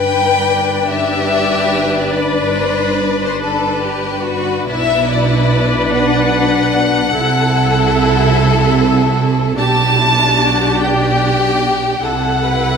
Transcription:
0.00 4.63 G1 medium
0.00 4.63 G2 medium
0.00 4.63 D4 medium
0.00 0.84 B4 loud
0.00 4.63 B4 medium
0.00 0.84 G5 loud
0.88 2.15 G4 loud
0.88 2.15 E5 loud
2.14 3.42 B4 medium
2.14 2.58 D5 medium
2.58 3.00 C5 medium
3.01 3.22 D5 loud
3.23 3.43 C5 loud
3.42 3.83 A4 medium
3.42 4.64 B4 medium
3.84 4.26 G4 medium
4.25 4.67 F#4 loud
4.67 7.10 B1 medium
4.67 7.11 B2 medium
4.67 7.10 D4 medium
4.67 5.88 E4 loud
4.67 7.10 B4 medium
4.67 5.07 E5 loud
5.08 5.90 D5 loud
5.90 7.14 D4 medium
5.90 9.18 F#5 loud
7.14 9.54 C2 loud
7.14 9.55 C3 medium
7.14 9.54 E4 medium
7.14 9.58 A4 loud
7.14 9.54 A4 loud
9.57 12.04 B1 medium
9.57 12.04 B2 medium
9.57 12.00 D4 medium
9.57 9.97 G4 medium
9.57 12.00 G4 medium
9.57 10.76 A5 loud
9.98 10.39 E4 medium
10.39 10.80 F#4 medium
10.80 12.04 G4 loud
10.80 12.04 G5 loud
12.03 12.77 C2 medium
12.03 12.77 C3 medium
12.03 12.77 E4 medium
12.03 12.77 A4 medium
12.03 12.45 A4 medium
12.03 12.77 F#5 loud
12.45 12.77 B4 medium

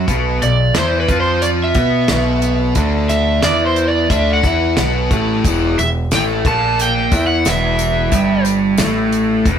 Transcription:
0.08 0.39 B1 medium
0.08 0.41 B2 loud
0.08 0.42 B3 loud
0.08 kick medium
0.08 closed hi-hat medium
0.42 0.73 B1 medium
0.42 0.70 B2 medium
0.42 0.77 D5 medium
0.42 closed hi-hat medium
0.74 1.07 E2 medium
0.74 1.07 E3 loud
0.74 1.08 E4 loud
0.74 snare loud
0.74 closed hi-hat loud
0.78 1.00 C5 medium
1.01 1.20 B4 medium
1.09 1.72 F2 medium
1.09 1.75 F3 medium
1.09 1.75 F4 medium
1.09 kick loud
1.09 closed hi-hat medium
1.20 1.43 C5 medium
1.42 1.48 D5 medium
1.42 closed hi-hat medium
1.64 2.61 E5 loud
1.74 2.07 B2 loud
1.74 2.09 B3 loud
1.74 2.09 B4 loud
1.74 kick loud
1.74 closed hi-hat medium
2.08 2.73 B1 medium
2.08 2.75 B2 loud
2.08 2.76 B3 loud
2.08 snare loud
2.08 closed hi-hat medium
2.42 closed hi-hat medium
2.75 3.39 D2 loud
2.75 3.43 D3 loud
2.75 3.43 D4 loud
2.75 kick loud
2.75 closed hi-hat medium
3.09 3.41 E5 medium
3.09 snare soft
3.09 closed hi-hat medium
3.43 4.07 E2 medium
3.43 4.09 E3 medium
3.43 4.10 E4 loud
3.43 3.65 D5 medium
3.43 snare loud
3.43 closed hi-hat medium
3.66 3.89 C5 medium
3.76 closed hi-hat medium
3.88 4.10 D5 medium
4.10 4.42 D2 loud
4.10 4.43 D3 medium
4.10 4.43 D4 loud
4.10 4.33 E5 loud
4.10 kick loud
4.10 closed hi-hat medium
4.34 5.30 F#5 medium
4.43 4.75 E2 medium
4.43 4.76 E3 medium
4.43 4.77 E4 medium
4.43 kick loud
4.43 closed hi-hat medium
4.77 5.09 B1 medium
4.77 5.10 B2 loud
4.77 5.10 B3 loud
4.77 snare loud
4.77 closed hi-hat medium
5.11 5.42 A1 medium
5.11 5.44 A2 medium
5.11 5.44 A3 medium
5.11 kick loud
5.11 closed hi-hat medium
5.44 5.76 E1 medium
5.44 5.77 E2 loud
5.44 5.78 E3 loud
5.44 kick medium
5.44 closed hi-hat loud
5.44 tambourine medium
5.78 6.10 E1 medium
5.78 6.05 E2 medium
5.78 5.88 E5 medium
5.78 closed hi-hat medium
5.78 tambourine medium
6.11 6.43 A1 medium
6.11 6.47 A2 medium
6.11 6.47 A3 loud
6.11 6.23 G5 medium
6.11 snare loud
6.11 closed hi-hat medium
6.11 tambourine medium
6.45 7.08 A#1 medium
6.45 7.12 A#2 medium
6.45 7.12 A#3 loud
6.45 6.78 A5 loud
6.45 kick loud
6.45 closed hi-hat medium
6.79 7.26 G5 loud
6.79 closed hi-hat medium
7.11 7.43 E2 loud
7.11 7.45 E3 loud
7.11 7.46 E4 loud
7.11 kick loud
7.11 closed hi-hat medium
7.11 tambourine medium
7.27 7.48 F#5 medium
7.45 8.08 E1 loud
7.45 8.11 E2 medium
7.45 8.12 E3 medium
7.45 snare medium
7.45 closed hi-hat loud
7.45 tambourine loud
7.49 8.44 E5 medium
7.79 closed hi-hat medium
7.79 tambourine medium
8.11 8.75 G1 medium
8.11 8.78 G2 medium
8.11 8.78 G3 loud
8.11 kick loud
8.11 closed hi-hat medium
8.11 tambourine medium
8.45 closed hi-hat medium
8.45 tambourine medium
8.78 9.42 A1 medium
8.78 9.46 A2 medium
8.78 9.46 A3 loud
8.78 snare loud
8.78 closed hi-hat medium
8.78 tambourine loud
9.12 closed hi-hat medium
9.12 tambourine soft
9.45 9.59 E1 medium
9.45 9.59 E2 medium
9.45 9.59 E3 loud
9.45 kick loud
9.45 closed hi-hat medium

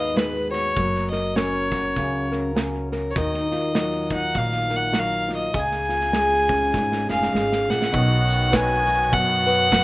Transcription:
0.00 0.72 D#2 medium
0.00 0.76 G#2 medium
0.00 0.72 D#3 soft
0.00 0.13 G#3 soft
0.00 0.76 B3 soft
0.00 0.50 F#4 medium
0.00 0.73 B4 medium
0.00 0.18 D#5 medium
0.15 0.72 G#3 medium
0.15 0.50 B4 medium
0.15 snare medium
0.50 1.71 F#4 soft
0.50 1.07 C#5 medium
0.50 snare soft
0.77 1.92 F#1 medium
0.77 3.74 F#3 medium
0.77 1.12 A#4 medium
0.77 kick medium
0.77 snare soft
0.95 snare soft
1.10 1.37 A#4 soft
1.10 1.37 D#5 medium
1.10 snare soft
1.35 2.54 C#4 medium
1.35 2.31 A#4 medium
1.35 2.30 C#5 medium
1.35 snare medium
1.72 3.12 F#4 medium
1.72 kick medium
1.72 snare soft
1.96 3.12 C#2 medium
1.96 3.16 C#3 medium
1.96 kick medium
1.96 snare soft
2.32 2.91 A#4 medium
2.32 snare soft
2.55 3.12 C#4 medium
2.55 snare medium
2.92 3.13 A#4 medium
2.92 snare soft
3.10 3.18 C#5 medium
3.16 4.32 D#2 medium
3.16 5.52 D#3 medium
3.16 3.74 A#4 medium
3.16 4.11 D#5 medium
3.16 kick medium
3.16 snare soft
3.34 snare soft
3.51 5.27 F4 soft
3.51 snare soft
3.75 4.91 F#3 medium
3.75 4.69 A#4 medium
3.75 snare medium
4.10 5.52 D#4 medium
4.10 4.40 F#5 medium
4.10 kick medium
4.10 snare soft
4.34 5.50 A#1 medium
4.34 5.51 A#2 medium
4.34 kick medium
4.34 snare soft
4.38 4.77 F5 medium
4.52 snare soft
4.70 5.52 A#4 medium
4.70 snare soft
4.76 5.00 F#5 medium
4.92 5.53 F#3 soft
4.92 snare medium
4.99 5.32 F5 medium
5.28 5.51 F4 soft
5.28 snare soft
5.35 5.61 D#5 medium
5.53 6.69 C#2 medium
5.53 6.73 C#3 medium
5.53 6.12 G#4 medium
5.53 kick medium
5.53 snare soft
5.59 7.10 G#5 medium
5.72 snare soft
5.89 7.67 F4 medium
5.89 snare soft
6.01 snare soft
6.13 7.30 G#3 medium
6.13 7.07 G#4 medium
6.13 snare medium
6.49 7.90 C#4 medium
6.49 kick medium
6.49 snare soft
6.72 7.07 G#1 medium
6.72 7.91 G#2 medium
6.72 kick medium
6.72 snare soft
6.92 snare soft
7.08 7.32 F1 medium
7.08 7.92 G#4 medium
7.08 7.72 F5 medium
7.08 snare soft
7.23 snare soft
7.31 7.65 G#1 medium
7.31 7.89 G#3 medium
7.35 snare medium
7.52 snare soft
7.68 7.91 A#1 medium
7.68 7.90 F4 soft
7.68 8.56 F#5 medium
7.68 snare medium
7.82 snare medium
7.92 9.08 B1 loud
7.92 9.10 B2 medium
7.92 9.84 D#3 medium
7.92 9.84 F#3 medium
7.92 9.84 B3 medium
7.92 9.84 D#4 medium
7.92 9.84 F#4 medium
7.92 kick medium
7.92 shaker medium
8.28 shaker medium
8.50 9.70 F#3 medium
8.50 9.45 B4 medium
8.50 kick medium
8.50 snare medium
8.50 shaker medium
8.55 9.14 G#5 medium
8.87 9.84 F#4 medium
8.87 shaker loud
9.11 9.84 F#2 medium
9.11 9.84 B2 medium
9.11 9.84 F#5 medium
9.11 kick medium
9.11 shaker medium
9.46 9.84 B4 medium
9.46 shaker medium
9.70 9.84 F#3 medium
9.70 kick medium
9.70 snare medium
9.70 shaker medium

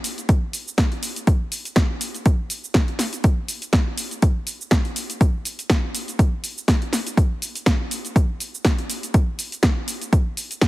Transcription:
0.04 open hi-hat loud
0.04 shaker medium
0.18 closed hi-hat soft
0.18 shaker soft
0.29 kick loud
0.29 closed hi-hat medium
0.29 shaker soft
0.53 open hi-hat loud
0.53 shaker medium
0.68 shaker soft
0.78 kick loud
0.78 snare loud
0.78 closed hi-hat medium
0.78 shaker soft
0.92 closed hi-hat soft
1.03 open hi-hat loud
1.03 shaker medium
1.16 closed hi-hat medium
1.16 shaker soft
1.27 kick loud
1.27 closed hi-hat medium
1.27 shaker soft
1.52 open hi-hat loud
1.52 shaker medium
1.65 closed hi-hat soft
1.65 shaker soft
1.76 kick loud
1.76 snare loud
1.76 closed hi-hat medium
1.76 shaker soft
2.01 open hi-hat loud
2.01 shaker medium
2.15 closed hi-hat soft
2.15 shaker soft
2.26 kick loud
2.26 closed hi-hat medium
2.26 shaker soft
2.50 open hi-hat loud
2.50 shaker medium
2.64 shaker soft
2.74 kick loud
2.74 snare loud
2.74 closed hi-hat medium
2.74 shaker soft
2.88 closed hi-hat soft
2.99 snare medium
2.99 open hi-hat loud
2.99 shaker medium
3.13 closed hi-hat soft
3.13 shaker soft
3.24 kick loud
3.24 closed hi-hat medium
3.24 shaker soft
3.48 open hi-hat loud
3.48 shaker medium
3.62 closed hi-hat soft
3.62 shaker soft
3.73 kick loud
3.73 snare loud
3.73 closed hi-hat medium
3.73 shaker soft
3.98 open hi-hat loud
3.98 shaker medium
4.11 closed hi-hat soft
4.11 shaker soft
4.22 kick loud
4.22 closed hi-hat medium
4.22 shaker soft
4.47 open hi-hat loud
4.47 shaker medium
4.61 shaker soft
4.71 kick loud
4.71 snare loud
4.71 closed hi-hat medium
4.71 shaker soft
4.85 closed hi-hat soft
4.96 open hi-hat loud
4.96 shaker medium
5.10 closed hi-hat medium
5.10 shaker soft
5.21 kick loud
5.21 closed hi-hat medium
5.21 shaker soft
5.45 open hi-hat loud
5.45 shaker medium
5.59 closed hi-hat soft
5.59 shaker soft
5.70 kick loud
5.70 snare loud
5.70 closed hi-hat medium
5.70 shaker soft
5.95 open hi-hat loud
5.95 shaker medium
6.08 closed hi-hat soft
6.08 shaker soft
6.19 kick loud
6.19 closed hi-hat medium
6.19 shaker soft
6.44 open hi-hat loud
6.44 shaker medium
6.58 shaker medium
6.68 kick medium
6.68 snare loud
6.68 closed hi-hat medium
6.68 shaker soft
6.82 closed hi-hat soft
6.93 snare medium
6.93 open hi-hat loud
6.93 shaker medium
7.07 closed hi-hat medium
7.07 shaker soft
7.17 kick loud
7.17 closed hi-hat medium
7.17 shaker soft
7.42 open hi-hat loud
7.42 shaker medium
7.55 closed hi-hat medium
7.55 shaker soft
7.66 kick loud
7.66 snare loud
7.66 closed hi-hat medium
7.66 shaker soft
7.91 open hi-hat loud
7.91 shaker medium
8.05 closed hi-hat soft
8.05 shaker soft
8.16 kick loud
8.16 closed hi-hat medium
8.16 shaker soft
8.40 open hi-hat loud
8.40 shaker medium
8.55 shaker soft
8.65 kick loud
8.65 snare loud
8.65 closed hi-hat medium
8.65 shaker soft
8.79 closed hi-hat soft
8.90 open hi-hat loud
8.90 shaker medium
9.03 closed hi-hat medium
9.03 shaker medium
9.14 kick loud
9.14 closed hi-hat medium
9.14 shaker soft
9.39 open hi-hat loud
9.39 shaker medium
9.52 closed hi-hat medium
9.52 shaker soft
9.63 kick loud
9.63 snare loud
9.63 closed hi-hat medium
9.63 shaker soft
9.88 open hi-hat loud
9.88 shaker medium
10.01 closed hi-hat soft
10.01 shaker soft
10.13 kick loud
10.13 closed hi-hat medium
10.13 shaker soft
10.37 open hi-hat loud
10.37 shaker medium
10.51 closed hi-hat soft
10.51 shaker soft
10.61 kick loud
10.61 snare loud
10.61 closed hi-hat medium
10.61 shaker soft

